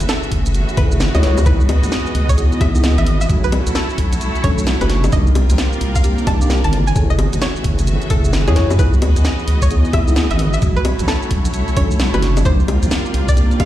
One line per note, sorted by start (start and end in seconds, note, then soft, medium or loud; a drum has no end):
0.00 0.07 F#1 medium
0.00 3.26 E3 medium
0.00 1.44 A3 medium
0.00 1.44 C#4 medium
0.00 4.04 F#4 medium
0.00 3.26 G#4 loud
0.00 4.04 B4 medium
0.00 1.46 E5 medium
0.00 cross-stick soft
0.00 closed hi-hat medium
0.00 shaker medium
0.09 0.32 A4 loud
0.09 snare loud
0.09 shaker medium
0.23 shaker soft
0.32 0.64 F#1 medium
0.32 kick medium
0.32 open hi-hat medium
0.46 closed hi-hat medium
0.46 shaker medium
0.54 closed hi-hat medium
0.54 shaker medium
0.69 closed hi-hat soft
0.69 shaker soft
0.77 1.10 F#1 loud
0.77 0.97 E4 medium
0.77 0.97 G#4 medium
0.77 0.97 A4 medium
0.77 1.01 B4 medium
0.77 0.97 E5 medium
0.77 kick loud
0.77 open hi-hat loud
0.92 shaker medium
1.00 snare loud
1.00 shaker medium
1.15 1.43 C#2 medium
1.15 1.22 E4 medium
1.15 1.22 G#4 medium
1.15 1.22 A4 medium
1.15 1.22 C#5 medium
1.15 1.38 D#5 loud
1.15 cross-stick soft
1.15 closed hi-hat medium
1.15 high bongo medium
1.15 shaker soft
1.23 1.38 E4 medium
1.23 1.38 G#4 medium
1.23 1.38 A4 medium
1.23 1.38 C#5 medium
1.23 snare medium
1.23 open hi-hat medium
1.38 closed hi-hat soft
1.38 high bongo medium
1.38 shaker medium
1.46 1.78 C#2 loud
1.46 3.28 B3 medium
1.46 1.61 B3 loud
1.46 1.61 D#4 medium
1.46 1.61 E4 medium
1.46 1.61 G#4 loud
1.46 1.70 B4 loud
1.46 3.28 D#5 medium
1.46 kick loud
1.46 closed hi-hat medium
1.46 shaker medium
1.60 shaker soft
1.65 3.29 D#5 medium
1.69 open hi-hat loud
1.69 high bongo medium
1.83 1.90 C#2 medium
1.83 cross-stick soft
1.83 closed hi-hat medium
1.83 shaker medium
1.92 snare loud
1.92 shaker medium
2.06 shaker soft
2.15 2.47 C#2 medium
2.15 open hi-hat medium
2.29 2.53 C#5 loud
2.29 kick medium
2.29 closed hi-hat medium
2.29 shaker medium
2.38 2.72 B3 medium
2.38 2.72 D#4 medium
2.38 2.72 E4 medium
2.38 2.72 G#4 loud
2.38 closed hi-hat medium
2.38 shaker medium
2.52 closed hi-hat soft
2.52 shaker soft
2.61 2.93 C#2 loud
2.61 2.84 E5 loud
2.61 kick loud
2.61 open hi-hat loud
2.61 high bongo medium
2.75 2.93 B3 medium
2.75 2.93 D#4 medium
2.75 2.93 E4 medium
2.75 2.93 G#4 loud
2.75 shaker medium
2.84 snare loud
2.84 shaker medium
2.98 3.26 G#1 medium
2.98 3.12 E5 medium
2.98 cross-stick soft
2.98 closed hi-hat medium
2.98 shaker soft
3.06 open hi-hat medium
3.21 3.35 E5 medium
3.21 shaker medium
3.29 3.62 B1 loud
3.29 3.49 A3 medium
3.29 5.11 A3 medium
3.29 5.11 C#4 medium
3.29 3.49 C#4 medium
3.29 3.49 D4 medium
3.29 5.13 E4 medium
3.29 3.49 F#4 medium
3.29 5.11 F#4 loud
3.29 kick loud
3.29 closed hi-hat medium
3.29 shaker medium
3.44 5.13 A4 medium
3.44 3.67 B4 loud
3.44 shaker soft
3.52 open hi-hat loud
3.52 high bongo medium
3.67 3.73 B1 medium
3.67 cross-stick soft
3.67 closed hi-hat medium
3.67 shaker medium
3.75 3.99 A4 medium
3.75 snare loud
3.75 shaker medium
3.90 shaker soft
3.95 4.30 B1 medium
3.95 5.13 C#5 medium
3.95 kick medium
3.95 open hi-hat medium
4.13 closed hi-hat medium
4.13 shaker medium
4.21 closed hi-hat medium
4.21 shaker medium
4.35 closed hi-hat soft
4.35 shaker soft
4.44 4.76 B1 loud
4.44 4.64 A3 medium
4.44 4.64 C#4 medium
4.44 4.64 D4 medium
4.44 4.64 A4 medium
4.44 4.68 C#5 medium
4.44 kick loud
4.44 open hi-hat loud
4.58 shaker medium
4.67 snare loud
4.67 shaker medium
4.81 5.10 F#1 medium
4.81 4.88 A3 medium
4.81 4.88 C#4 medium
4.81 4.88 D4 medium
4.81 4.88 F#4 loud
4.81 5.04 B4 loud
4.81 cross-stick soft
4.81 closed hi-hat medium
4.81 high bongo medium
4.81 shaker soft
4.90 5.04 A3 medium
4.90 5.04 C#4 medium
4.90 5.04 D4 medium
4.90 5.04 F#4 medium
4.90 snare medium
4.90 open hi-hat medium
5.04 high bongo medium
5.04 shaker medium
5.12 5.45 C2 loud
5.12 6.94 A#3 medium
5.12 5.27 A#3 loud
5.12 6.94 C4 medium
5.12 5.27 D4 medium
5.12 5.27 D#4 medium
5.12 6.96 F4 medium
5.12 6.94 G4 loud
5.12 5.27 G4 loud
5.12 5.36 D#5 loud
5.12 kick loud
5.12 closed hi-hat medium
5.12 shaker medium
5.27 shaker soft
5.35 6.96 A#4 medium
5.35 open hi-hat loud
5.35 high bongo medium
5.50 5.56 C2 loud
5.50 cross-stick soft
5.50 closed hi-hat medium
5.50 shaker medium
5.58 snare loud
5.58 shaker medium
5.64 6.96 D5 medium
5.73 shaker soft
5.81 6.13 C2 medium
5.81 open hi-hat loud
5.95 6.19 F5 medium
5.95 kick medium
5.95 closed hi-hat medium
5.95 shaker medium
6.04 6.38 A#3 medium
6.04 6.38 D4 medium
6.04 6.38 D#4 medium
6.04 6.38 G4 loud
6.04 closed hi-hat medium
6.04 shaker medium
6.18 closed hi-hat soft
6.18 shaker soft
6.27 6.59 C2 loud
6.27 6.51 A5 loud
6.27 kick loud
6.27 open hi-hat loud
6.27 high bongo medium
6.41 6.59 A#3 loud
6.41 6.59 D4 medium
6.41 6.59 D#4 medium
6.41 6.59 G4 loud
6.41 shaker medium
6.50 snare loud
6.50 shaker medium
6.64 6.93 G1 medium
6.64 6.78 A5 medium
6.64 cross-stick soft
6.64 closed hi-hat medium
6.64 shaker soft
6.73 open hi-hat loud
6.87 7.01 G#5 medium
6.87 shaker medium
6.96 7.28 F#1 loud
6.96 10.59 E3 medium
6.96 8.77 A3 medium
6.96 8.77 C#4 medium
6.96 7.16 E4 medium
6.96 11.37 F#4 medium
6.96 10.59 G#4 loud
6.96 7.16 G#4 medium
6.96 7.16 A4 medium
6.96 7.16 C#5 medium
6.96 kick loud
6.96 closed hi-hat medium
6.96 shaker medium
7.10 7.34 D#5 loud
7.10 shaker soft
7.19 open hi-hat loud
7.19 high bongo medium
7.32 7.40 F#1 medium
7.32 11.37 B4 medium
7.32 cross-stick soft
7.32 closed hi-hat medium
7.32 shaker medium
7.42 7.65 C#5 loud
7.42 snare loud
7.42 shaker medium
7.47 8.79 E5 medium
7.56 shaker soft
7.64 7.97 F#1 medium
7.64 kick medium
7.64 open hi-hat loud
7.79 closed hi-hat medium
7.79 shaker medium
7.87 closed hi-hat medium
7.87 shaker medium
8.02 closed hi-hat soft
8.02 shaker soft
8.10 8.49 F#1 loud
8.10 8.30 E4 medium
8.10 8.30 G#4 medium
8.10 8.34 A4 medium
8.10 8.30 A4 medium
8.10 8.30 E5 medium
8.10 kick loud
8.10 open hi-hat loud
8.25 shaker medium
8.33 snare loud
8.33 shaker medium
8.48 8.76 F#2 loud
8.48 8.55 E4 medium
8.48 8.55 G#4 medium
8.48 8.71 G#4 medium
8.48 8.55 A4 medium
8.48 8.55 C#5 loud
8.48 cross-stick soft
8.48 closed hi-hat medium
8.48 high bongo medium
8.48 shaker soft
8.56 8.71 E4 medium
8.56 8.71 G#4 medium
8.56 8.71 A4 medium
8.56 8.71 C#5 medium
8.56 snare medium
8.56 open hi-hat loud
8.71 high bongo medium
8.71 shaker medium
8.79 9.11 C#2 loud
8.79 10.60 B3 medium
8.79 8.94 B3 loud
8.79 8.94 D#4 medium
8.79 8.94 E4 medium
8.79 8.94 G#4 loud
8.79 9.03 B4 loud
8.79 10.60 D#5 medium
8.79 kick loud
8.79 closed hi-hat medium
8.79 shaker medium
8.93 shaker soft
9.02 open hi-hat loud
9.02 high bongo medium
9.09 10.62 D#5 medium
9.16 9.23 C#2 medium
9.16 cross-stick soft
9.16 closed hi-hat medium
9.16 shaker medium
9.25 snare loud
9.25 shaker medium
9.39 shaker soft
9.48 9.80 C#2 medium
9.48 open hi-hat loud
9.62 9.86 C#5 loud
9.62 kick medium
9.62 closed hi-hat medium
9.62 shaker medium
9.71 10.05 B3 medium
9.71 10.05 D#4 medium
9.71 10.05 E4 medium
9.71 10.05 G#4 loud
9.71 closed hi-hat medium
9.71 shaker medium
9.85 closed hi-hat soft
9.85 shaker soft
9.93 10.26 C#2 loud
9.93 10.17 E5 medium
9.93 kick loud
9.93 open hi-hat loud
9.93 high bongo medium
10.08 10.26 B3 loud
10.08 10.25 D#4 medium
10.08 10.26 E4 medium
10.08 10.26 G#4 loud
10.08 shaker medium
10.16 snare loud
10.16 shaker medium
10.31 10.59 G#1 medium
10.31 10.45 E5 medium
10.31 cross-stick soft
10.31 closed hi-hat medium
10.31 shaker soft
10.39 open hi-hat loud
10.53 10.68 E5 medium
10.53 shaker medium
10.62 10.94 B1 loud
10.62 12.44 A3 medium
10.62 10.82 A3 medium
10.62 12.43 C#4 medium
10.62 10.82 C#4 medium
10.62 10.82 D4 medium
10.62 12.46 E4 medium
10.62 12.44 F#4 loud
10.62 10.82 F#4 medium
10.62 kick loud
10.62 closed hi-hat medium
10.62 shaker medium
10.76 11.00 B4 loud
10.76 shaker soft
10.85 open hi-hat loud
10.85 high bongo medium
10.94 12.46 A4 medium
10.99 11.06 B1 loud
10.99 12.45 C#5 medium
10.99 cross-stick soft
10.99 closed hi-hat medium
10.99 shaker medium
11.08 11.32 A4 loud
11.08 snare loud
11.08 shaker medium
11.22 shaker soft
11.31 11.63 B1 medium
11.31 kick medium
11.31 open hi-hat loud
11.45 closed hi-hat medium
11.45 shaker medium
11.54 closed hi-hat medium
11.54 shaker medium
11.68 closed hi-hat soft
11.68 shaker soft
11.77 12.09 B1 loud
11.77 11.97 A3 medium
11.77 11.96 C#4 medium
11.77 11.96 D4 medium
11.77 11.96 A4 medium
11.77 12.00 C#5 loud
11.77 kick loud
11.77 open hi-hat loud
11.91 shaker medium
12.00 snare loud
12.00 shaker medium
12.14 12.42 F#1 medium
12.14 12.21 A3 medium
12.14 12.21 C#4 medium
12.14 12.21 D4 medium
12.14 12.21 F#4 loud
12.14 12.37 B4 loud
12.14 cross-stick soft
12.14 closed hi-hat soft
12.14 high bongo medium
12.14 shaker soft
12.22 12.37 A3 medium
12.22 12.37 C#4 medium
12.22 12.37 D4 medium
12.22 12.37 F#4 medium
12.22 snare medium
12.22 open hi-hat loud
12.37 high bongo medium
12.37 shaker medium
12.45 12.78 C2 loud
12.45 12.60 A#3 loud
12.45 13.65 A#3 medium
12.45 13.65 C4 medium
12.45 12.60 D4 medium
12.45 12.60 D#4 medium
12.45 13.65 F4 medium
12.45 12.60 G4 loud
12.45 13.65 G4 medium
12.45 12.69 C5 loud
12.45 kick loud
12.45 closed hi-hat medium
12.45 shaker medium
12.56 13.65 A#4 medium
12.56 shaker soft
12.68 open hi-hat loud
12.68 high bongo medium
12.79 13.65 D5 medium
12.79 cross-stick soft
12.79 closed hi-hat medium
12.79 shaker medium
12.83 12.89 C2 medium
12.91 snare loud
12.91 shaker medium
13.06 shaker soft
13.14 13.46 C2 medium
13.14 open hi-hat loud
13.28 13.52 D5 loud
13.28 kick medium
13.28 closed hi-hat medium
13.28 shaker medium
13.37 13.65 A#3 medium
13.37 13.65 D4 medium
13.37 13.65 D#4 medium
13.37 13.65 G4 loud
13.37 closed hi-hat medium
13.37 shaker medium
13.51 closed hi-hat soft
13.51 shaker soft
13.60 13.65 C2 loud
13.60 13.65 F5 medium
13.60 kick loud
13.60 open hi-hat loud
13.60 high bongo medium